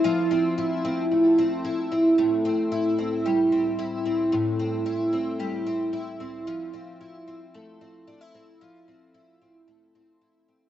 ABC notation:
X:1
M:4/4
L:1/16
Q:1/4=112
K:Flyd
V:1 name="Twelve-string acoustic guitar"
[F,A,CE]2 C2 E2 C2 A,2 C2 E2 C2 | A,,2 C2 E2 C2 G,2 C2 E2 C2 | A,,2 C2 E2 C2 G,2 C2 E2 C2 | F,2 C2 E2 C2 A,2 C2 D E C2 |
F,2 C2 E2 C2 A,2 C2 E2 C2 |]